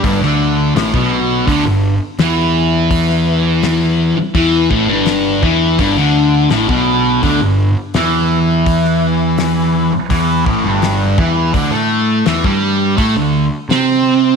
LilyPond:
<<
  \new Staff \with { instrumentName = "Distorted electric guitar" } { \clef bass \time 4/4 \key g \lydian \tempo 4 = 83 g,16 d8. a,16 b,8. d16 g,8 r16 e4~ | e4.~ e16 r16 e8 a,16 g,8. e8 | g,16 d8. a,16 b,8. d16 g,8 r16 e4~ | e4.~ e16 r16 e8 a,16 g,8. e8 |
d16 a8. e16 g8. a16 d8 r16 c'4 | }
  \new Staff \with { instrumentName = "Picked electric bass" } { \clef bass \time 4/4 \key g \lydian g,,16 d,8. a,,16 b,,8. d,16 g,,8 r16 e,4~ | e,4.~ e,16 r16 e,8 a,,16 g,,8. e,8 | g,,16 d,8. a,,16 b,,8. d,16 g,,8 r16 e,4~ | e,4.~ e,16 r16 e,8 a,,16 g,,8. e,8 |
d,16 a,8. e,16 g,8. a,16 d,8 r16 c4 | }
  \new DrumStaff \with { instrumentName = "Drums" } \drummode { \time 4/4 <hho bd>16 sn8. <hho sn>16 bd8. <hho bd>4 <hho sn>4 | <hho bd>16 sn8. <hho sn>4 <hho bd>8 bd8 <hho sn>8 bd8 | <hho bd>4 <hho sn>16 bd8. <hho bd>4 <hho sn>4 | <hho bd>16 sn8. <hho sn>4 <hho bd>8 bd8 <hho sn>8 bd8 |
<hho bd>4 <hho sn>16 bd8. <hho bd>4 <hho sn>4 | }
>>